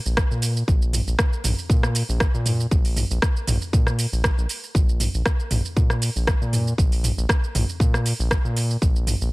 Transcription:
0.06 analog synth bass A#1, shaker
0.17 kick, cross-stick, shaker
0.31 analog synth bass A#2, shaker
0.42 open hi-hat, shaker
0.57 shaker
0.68 analog synth bass A#1, kick, shaker
0.82 shaker
0.93 mid tom, open hi-hat, shaker
1.07 analog synth bass A#1, shaker
1.19 kick, cross-stick, shaker
1.33 shaker
1.44 analog synth bass A#1, mid tom, open hi-hat, shaker
1.59 shaker
1.70 analog synth bass A#2, kick, shaker
1.83 cross-stick, shaker
1.95 open hi-hat, shaker
2.09 analog synth bass A#1, shaker
2.20 kick, cross-stick, shaker
2.34 analog synth bass A#2, shaker
2.46 mid tom, open hi-hat, shaker
2.60 shaker
2.71 analog synth bass A#1, kick, shaker
2.85 open hi-hat, shaker
2.96 mid tom, open hi-hat, shaker
3.11 analog synth bass A#1, shaker
3.22 kick, cross-stick, shaker
3.37 shaker
3.47 analog synth bass A#1, mid tom, open hi-hat, shaker
3.62 shaker
3.73 analog synth bass A#2, kick, shaker
3.87 cross-stick, shaker
3.99 open hi-hat, shaker
4.12 analog synth bass A#1, shaker
4.24 kick, cross-stick, shaker
4.38 analog synth bass A#1, shaker
4.49 open hi-hat, shaker
4.64 shaker
4.75 analog synth bass A#1, kick, shaker
4.89 shaker
5.00 mid tom, open hi-hat, shaker
5.14 analog synth bass A#1, shaker
5.26 kick, cross-stick, shaker
5.40 shaker
5.51 analog synth bass A#1, mid tom, open hi-hat, shaker
5.65 shaker
5.76 analog synth bass A#2, kick, shaker
5.90 cross-stick, shaker
6.02 open hi-hat, shaker
6.16 analog synth bass A#1, shaker
6.27 kick, cross-stick, shaker
6.41 analog synth bass A#2, shaker
6.53 mid tom, open hi-hat, shaker
6.67 shaker
6.78 analog synth bass A#1, kick, shaker
6.92 open hi-hat, shaker
7.04 mid tom, open hi-hat, shaker
7.18 analog synth bass A#1, shaker
7.29 kick, cross-stick, shaker
7.44 shaker
7.55 analog synth bass A#1, mid tom, open hi-hat, shaker
7.69 shaker
7.80 analog synth bass A#2, kick, shaker
7.94 cross-stick, shaker
8.06 open hi-hat, shaker
8.19 analog synth bass A#1, shaker
8.31 kick, cross-stick, shaker
8.45 analog synth bass A#2, shaker
8.56 open hi-hat, shaker
8.71 shaker
8.82 analog synth bass A#1, kick, shaker
8.96 shaker
9.07 mid tom, open hi-hat, shaker
9.21 analog synth bass A#1, shaker

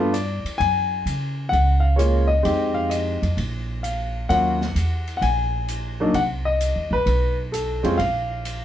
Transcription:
Already playing: upright bass G2, grand piano A3 B3
0.00 grand piano D4 F4
0.13 grand piano D5, hi-hat pedal, ride
0.44 muted upright bass stroke, ride
0.58 upright bass F#2, grand piano G#5, kick, ride
1.06 upright bass C#3, hi-hat pedal, ride
1.49 upright bass C#2, grand piano F#5, kick
1.53 ride
1.80 grand piano F5
1.96 grand piano G#3 A#3 C#4 F4 C#5, hi-hat pedal, ride
2.27 grand piano D#5
2.43 upright bass F2, grand piano G#3 C4 D#4 G4, kick, ride
2.74 grand piano F5
2.90 grand piano D#5, hi-hat pedal, ride
3.22 upright bass F2, ride
3.37 upright bass A#1, kick, ride
3.83 grand piano F5, hi-hat pedal, ride
4.29 upright bass D#2, grand piano F#3 A#3 C#4 F4 F#5, kick, ride
4.61 snare
4.75 upright bass E2, hi-hat pedal, ride
5.08 ride
5.17 grand piano F#5
5.21 upright bass A#1, grand piano G#5, kick, ride
5.68 hi-hat pedal, ride
6.00 grand piano F#3 A#3 D4 D#4
6.14 upright bass C2, grand piano F#5, kick, ride
6.45 grand piano D#5
6.61 hi-hat pedal, ride
6.76 upright bass D#2
6.91 upright bass A#1, grand piano B4
7.06 upright bass B1, kick, ride
7.52 grand piano A4, hi-hat pedal, ride
7.83 upright bass F2, grand piano G#3 C4 C#4 F4, ride
7.98 upright bass A#1, grand piano F5, kick, ride
8.45 hi-hat pedal, ride

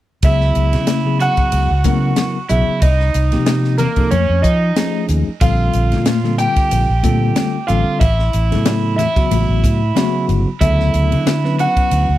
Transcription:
0.23 fingered electric bass C#2, tine electric piano C#3 F#3 B3 E4 G#4, overdriven electric guitar E4, grand piano E5, kick, hi-hat pedal, ride, muted conga
0.41 snare
0.55 fingered electric bass C#2, hi-hat pedal, ride
0.73 fingered electric bass C#3, snare, ride
0.87 snare, hi-hat pedal, ride, high conga
1.05 tine electric piano C#3 F#3 B3 E4 G#4
1.20 overdriven electric guitar F#4, grand piano F#5, hi-hat pedal, ride
1.37 muted fingered electric bass stroke, kick, ride
1.52 fingered electric bass C#2, hi-hat pedal, ride, muted conga
1.71 fingered electric bass C#2
1.84 tine electric piano C#3 F#3 B3 E4 A#4, fingered electric bass C#3, kick, hi-hat pedal, ride, muted conga, high conga
2.16 snare, hi-hat pedal, ride, high conga
2.49 fingered electric bass B1, tine electric piano C#3 F#3 B3 E4 G#4, overdriven electric guitar E4, grand piano E5, hi-hat pedal, ride, muted conga
2.68 muted fingered electric bass stroke
2.82 fingered electric bass C2, overdriven electric guitar D#4, grand piano D#5, kick, hi-hat pedal, ride, muted conga
3.00 snare
3.14 fingered electric bass C2, hi-hat pedal, ride
3.32 tine electric piano C3 F3 A#3 D#4 G4, fingered electric bass C3, snare, ride
3.46 snare, hi-hat pedal, ride, high conga
3.64 snare
3.78 overdriven electric guitar A#3, grand piano A#4, snare, hi-hat pedal, ride, low conga
3.96 tine electric piano C3 F3 A#3 D#4 A4, muted fingered electric bass stroke, kick, ride
4.11 fingered electric bass F2, overdriven electric guitar C#4, grand piano C#5, hi-hat pedal, ride, muted conga, high conga
4.29 fingered electric bass F2
4.42 fingered electric bass F3, overdriven electric guitar D#4, grand piano D#5, kick, hi-hat pedal, ride, muted conga
4.76 tine electric piano F3 A3 C#4 D#4 G#4, snare, hi-hat pedal, ride, high conga
5.09 fingered electric bass D#2, hi-hat pedal, ride, muted conga
5.28 muted fingered electric bass stroke
5.41 fingered electric bass A#1, tine electric piano D3 G3 C4 F4 A4, overdriven electric guitar F4, grand piano F5, kick, hi-hat pedal, ride, muted conga
5.73 fingered electric bass A#1, hi-hat pedal, ride
5.92 fingered electric bass A#2, snare, ride
6.06 snare, hi-hat pedal, ride, high conga
6.24 tine electric piano D3 G3 C4 F4 A4, snare
6.38 overdriven electric guitar G4, grand piano G5, hi-hat pedal, ride
6.56 muted fingered electric bass stroke, kick, ride
6.71 fingered electric bass A#1, hi-hat pedal, ride, muted conga
6.89 fingered electric bass A#1
7.03 fingered electric bass A#2, tine electric piano D3 G3 C4 F4 A4, kick, hi-hat pedal, ride, muted conga, high conga
7.36 snare, hi-hat pedal, ride, high conga
7.67 fingered electric bass A1, tine electric piano D3 G3 C4 F4 A4, overdriven electric guitar F4, grand piano F5, hi-hat pedal, ride, muted conga
7.88 muted fingered electric bass stroke
7.99 fingered electric bass A1, overdriven electric guitar E4, grand piano E5, kick, hi-hat pedal, ride, muted conga
8.19 snare
8.33 fingered electric bass A1, hi-hat pedal, ride
8.51 fingered electric bass A2, tine electric piano C#3 F#3 B3 E4 A4, snare, ride
8.65 snare, hi-hat pedal, ride, high conga
8.96 overdriven electric guitar E4, grand piano E5, snare, hi-hat pedal, ride, low conga
9.16 tine electric piano C#3 F#3 B3 E4 F#4, muted fingered electric bass stroke, kick, ride
9.31 fingered electric bass A1, hi-hat pedal, ride, muted conga, high conga
9.49 fingered electric bass A1
9.64 fingered electric bass A2, kick, hi-hat pedal, ride, muted conga
9.95 tine electric piano C#3 F#3 B3 E4 F#4, snare, hi-hat pedal, ride, high conga
10.29 fingered electric bass G1, hi-hat pedal, ride, muted conga
10.47 muted fingered electric bass stroke
10.61 fingered electric bass D2, tine electric piano C#3 F#3 B3 E4 A4, overdriven electric guitar E4, grand piano E5, kick, hi-hat pedal, ride, muted conga
10.80 snare
10.94 fingered electric bass D2, hi-hat pedal, ride
11.12 fingered electric bass D3, ride
11.27 snare, hi-hat pedal, ride, high conga
11.44 tine electric piano F#3 B3 C#4 E4 B4, snare
11.59 overdriven electric guitar F#4, grand piano F#5, hi-hat pedal, ride
11.77 muted fingered electric bass stroke, kick, ride
11.91 fingered electric bass D2, hi-hat pedal, ride, muted conga
12.09 fingered electric bass D2

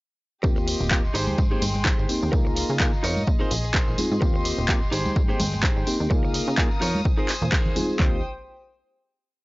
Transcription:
0.43 analog synth bass D#2, reed electric piano A#3 C4 F4 G4, violin section G4 D#5 C6, muted clean electric guitar stroke, kick, tambourine
0.56 muted clean electric guitar stroke, tambourine
0.67 muted clean electric guitar stroke, open hi-hat, tambourine
0.80 analog synth bass D#1, tambourine
0.91 reed electric piano A#3 C4 F4 G4, kick, clap, tambourine
1.05 tambourine
1.14 analog synth bass G#1, violin section G#3 G5, clean electric guitar D#4 G4 G#4 C5, open hi-hat, tambourine
1.27 analog synth bass D#2, tambourine, high conga
1.38 analog synth bass G#2, kick, tambourine
1.50 reed electric piano A#3 C4 D#4 G4, clean electric guitar D#4 G4 G#4 C5, tambourine
1.62 analog synth bass G#1, open hi-hat, tambourine, high conga
1.74 muted clean electric guitar stroke, tambourine, high conga
1.85 clean electric guitar D#4 G4 G#4 C5, kick, clap, tambourine
1.99 analog synth bass G#1, tambourine
2.09 reed electric piano A#3 C4 D#4 G4, open hi-hat, tambourine
2.22 analog synth bass D#2, tambourine
2.32 analog synth bass C#2, reed electric piano A#3 D#4 F4 G#4, violin section F4 D#5 A#5, muted clean electric guitar stroke, kick, tambourine
2.45 muted clean electric guitar stroke, tambourine
2.56 muted clean electric guitar stroke, open hi-hat, tambourine
2.69 analog synth bass C#3, tambourine
2.80 reed electric piano A#3 D#4 F4 G#4, kick, clap, tambourine
2.93 tambourine
3.03 analog synth bass F2, clean electric guitar D#4 F4 A#4 C#5, open hi-hat, tambourine
3.16 analog synth bass G#2, tambourine, high conga
3.27 analog synth bass A#2, violin section G#4 C6, kick, tambourine
3.39 reed electric piano C4 D#4 F4 G#4, clean electric guitar D#4 G#4 A#4 C5, tambourine
3.51 analog synth bass A#1, open hi-hat, tambourine
3.63 muted clean electric guitar stroke, tambourine
3.74 clean electric guitar D#4 G#4 A#4 C5, kick, clap, tambourine
3.88 analog synth bass A#1, tambourine
3.98 reed electric piano C4 D#4 F4 G#4, open hi-hat, tambourine, high conga
4.11 analog synth bass G#2, tambourine
4.21 analog synth bass D#2, reed electric piano A#3 C4 F4 G4, violin section G4 D#5, muted clean electric guitar stroke, kick, tambourine
4.34 muted clean electric guitar stroke, tambourine
4.44 muted clean electric guitar stroke, open hi-hat, tambourine
4.58 analog synth bass D#1, tambourine
4.69 reed electric piano A#3 C4 F4 G4, kick, clap, tambourine
4.82 tambourine
4.92 analog synth bass G#1, violin section G#3 G5, clean electric guitar D#4 G4 G#4 C5, open hi-hat, tambourine
5.05 analog synth bass D#2, tambourine, high conga
5.16 analog synth bass G#2, kick, tambourine
5.28 reed electric piano A#3 C4 D#4 G4, clean electric guitar D#4 G4 G#4 C5, tambourine
5.40 analog synth bass G#1, open hi-hat, tambourine, high conga
5.52 muted clean electric guitar stroke, tambourine, high conga
5.63 clean electric guitar D#4 G4 G#4 C5, kick, clap
5.76 analog synth bass G#1, tambourine
5.87 reed electric piano A#3 C4 D#4 G4, open hi-hat, tambourine
6.00 analog synth bass D#2, tambourine
6.10 analog synth bass C#2, reed electric piano A#3 D#4 F4 G#4, violin section A#4 F5 D#6, muted clean electric guitar stroke, kick, tambourine
6.23 muted clean electric guitar stroke, tambourine
6.34 muted clean electric guitar stroke, open hi-hat, tambourine
6.47 analog synth bass C#3, tambourine
6.57 reed electric piano A#3 D#4 F4 G#4, kick, clap, tambourine
6.71 tambourine
6.81 analog synth bass F2, clean electric guitar D#4 F4 A#4 C#5, open hi-hat, tambourine
6.95 analog synth bass G#2, tambourine, high conga
7.05 violin section C5 G#5, kick, tambourine
7.17 reed electric piano C4 D#4 F4 G#4, clean electric guitar D#4 G#4 A#4 C5, tambourine
7.29 clap, open hi-hat, tambourine
7.41 analog synth bass A#2, muted clean electric guitar stroke, tambourine, low conga
7.52 clean electric guitar D#4 G#4 A#4 C5, kick, clap, tambourine
7.65 tambourine, low conga
7.75 reed electric piano C4 D#4 F4 G#4, open hi-hat, tambourine, high conga
7.89 tambourine
7.99 analog synth bass D#2, reed electric piano A#3 C4 F4 G4, clean electric guitar D#4 G4 C5, violin section C5 G5 D#6, kick, clap, floor tom

